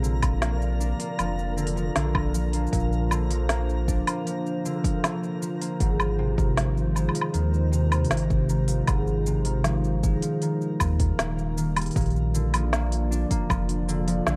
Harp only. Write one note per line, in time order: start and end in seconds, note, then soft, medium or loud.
0.00 1.56 D3 medium
0.00 2.26 C4 medium
0.22 1.17 F3 medium
0.42 0.99 A#3 medium
0.80 3.60 D4 medium
0.99 2.53 A#3 medium
1.18 1.63 F3 medium
1.57 1.94 D3 medium
1.76 2.01 F3 medium
1.95 2.78 D3 medium
2.34 3.16 F3 medium
2.53 3.49 A#3 medium
2.72 3.16 A#2 medium
3.11 4.64 D3 medium
3.30 4.25 F3 medium
3.50 4.07 A#3 medium
3.88 6.43 D4 medium
4.08 5.61 A#3 medium
4.26 4.70 F3 medium
4.65 5.03 D3 medium
4.84 5.09 F3 medium
5.04 5.86 D3 medium
5.42 5.86 F3 medium
5.61 8.83 A#3 medium
5.80 6.24 G#2 medium
6.19 6.43 C3 medium
6.37 7.32 D#3 medium
6.56 7.13 F3 medium
6.95 7.39 G#3 medium
7.14 7.39 F3 medium
7.33 7.78 D#3 medium
7.72 7.97 C3 medium
7.91 8.16 D#3 medium
8.11 8.55 C3 medium
8.49 8.93 D#3 medium
8.68 8.93 F3 medium
8.88 9.32 G#2 medium
9.26 9.51 C3 medium
9.45 10.41 D#3 medium
9.64 10.21 F3 medium
10.03 10.47 G#3 medium
10.22 10.47 F3 medium
10.42 10.86 D#3 medium
10.80 11.05 A#2 medium
11.00 11.24 D#3 medium
11.19 11.63 A#2 medium
11.57 12.01 D#3 medium
11.76 12.01 G3 medium
11.96 12.39 A#2 medium
12.34 13.87 D3 medium
12.54 13.48 F3 medium
12.72 13.30 A#3 medium
13.11 14.36 D4 medium
13.30 14.36 A#3 medium
13.49 13.93 F3 medium
13.88 14.26 D3 medium
14.07 14.32 F3 medium
14.27 14.36 D3 medium